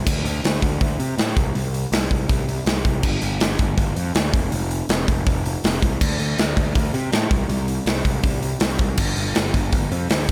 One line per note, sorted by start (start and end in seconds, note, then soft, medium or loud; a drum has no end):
0.07 0.21 D2 medium
0.07 kick loud
0.07 crash medium
0.24 0.39 D2 medium
0.24 open hi-hat medium
0.44 0.58 D2 medium
0.44 snare loud
0.44 open hi-hat medium
0.62 0.77 D2 medium
0.62 kick medium
0.62 open hi-hat medium
0.81 0.96 D2 medium
0.81 kick loud
0.81 open hi-hat medium
0.99 1.14 C3 medium
0.99 open hi-hat medium
1.18 1.32 A2 medium
1.18 snare loud
1.18 open hi-hat medium
1.37 1.51 C2 medium
1.37 kick loud
1.37 open hi-hat medium
1.55 1.84 C2 medium
1.55 open hi-hat medium
1.74 open hi-hat medium
1.92 2.07 C2 medium
1.92 snare loud
1.92 open hi-hat medium
2.11 2.25 C2 medium
2.11 kick medium
2.11 open hi-hat medium
2.29 2.59 C2 medium
2.29 kick loud
2.29 open hi-hat medium
2.49 open hi-hat medium
2.66 2.81 C2 medium
2.66 snare loud
2.66 open hi-hat medium
2.85 3.05 C2 medium
2.85 kick medium
2.85 open hi-hat medium
3.03 3.18 G1 medium
3.03 kick loud
3.03 crash medium
3.22 3.37 G1 medium
3.22 open hi-hat medium
3.40 3.55 G1 medium
3.40 snare loud
3.40 open hi-hat medium
3.59 3.74 G1 medium
3.59 kick medium
3.59 open hi-hat medium
3.77 3.92 G1 medium
3.77 kick loud
3.77 open hi-hat medium
3.96 4.11 F2 medium
3.96 open hi-hat medium
4.15 4.30 D2 medium
4.15 snare loud
4.15 open hi-hat medium
4.33 4.48 F1 medium
4.33 kick loud
4.33 open hi-hat medium
4.52 4.81 F1 medium
4.52 open hi-hat medium
4.71 open hi-hat medium
4.89 5.04 F1 medium
4.89 snare loud
4.89 open hi-hat medium
5.08 5.23 F1 medium
5.08 kick medium
5.08 open hi-hat medium
5.26 5.56 F1 medium
5.26 kick loud
5.26 open hi-hat medium
5.46 open hi-hat medium
5.64 5.79 F1 medium
5.64 snare loud
5.64 open hi-hat medium
5.82 5.97 C2 medium
5.82 kick medium
5.82 open hi-hat medium
6.01 6.16 D2 medium
6.01 kick loud
6.01 crash medium
6.19 6.34 D2 medium
6.19 open hi-hat medium
6.38 6.53 D2 medium
6.38 snare loud
6.38 open hi-hat medium
6.57 6.71 D2 medium
6.57 kick medium
6.57 open hi-hat medium
6.75 6.90 D2 medium
6.75 kick loud
6.75 open hi-hat medium
6.94 7.08 C3 medium
6.94 open hi-hat medium
7.12 7.27 A2 medium
7.12 snare loud
7.12 open hi-hat medium
7.31 7.45 C2 medium
7.31 kick loud
7.31 open hi-hat medium
7.48 7.78 C2 loud
7.48 open hi-hat medium
7.68 open hi-hat medium
7.86 8.01 C2 medium
7.86 snare loud
7.86 open hi-hat medium
8.05 8.20 C2 medium
8.05 kick medium
8.05 open hi-hat medium
8.23 8.53 C2 medium
8.23 kick loud
8.23 open hi-hat medium
8.42 open hi-hat medium
8.60 8.76 C2 medium
8.60 snare loud
8.60 open hi-hat medium
8.79 8.94 C2 medium
8.79 kick medium
8.79 open hi-hat medium
8.97 9.13 G1 loud
8.97 kick loud
8.97 crash medium
9.16 9.32 G1 medium
9.16 open hi-hat medium
9.35 9.50 G1 medium
9.35 snare loud
9.35 open hi-hat medium
9.54 9.69 G1 medium
9.54 kick medium
9.54 open hi-hat medium
9.72 9.87 G1 medium
9.72 kick loud
9.72 open hi-hat medium
9.92 10.06 F2 medium
9.92 open hi-hat medium
10.10 10.25 D2 medium
10.10 snare loud
10.10 open hi-hat medium
10.28 10.32 F1 medium